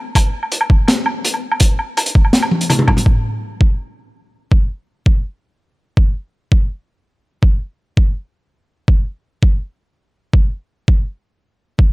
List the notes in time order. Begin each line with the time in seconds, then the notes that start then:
0.15 kick, closed hi-hat, low woodblock
0.43 low woodblock
0.52 closed hi-hat
0.61 low woodblock
0.70 kick
0.88 snare, closed hi-hat, low woodblock
1.06 low woodblock
1.25 closed hi-hat
1.34 low woodblock
1.52 low woodblock
1.60 kick, closed hi-hat
1.79 low woodblock
1.97 closed hi-hat, low woodblock
2.06 closed hi-hat
2.15 kick
2.25 low woodblock
2.33 snare, closed hi-hat
2.43 low woodblock
2.51 high tom
2.61 closed hi-hat
2.70 closed hi-hat, mid tom, low woodblock
2.79 mid tom
2.88 kick, mid tom, low woodblock
2.97 closed hi-hat, mid tom
3.06 kick
3.61 kick
4.52 kick
5.06 kick
5.97 kick
6.52 kick
7.43 kick
7.97 kick
8.88 kick
9.43 kick
10.34 kick
10.88 kick
11.79 kick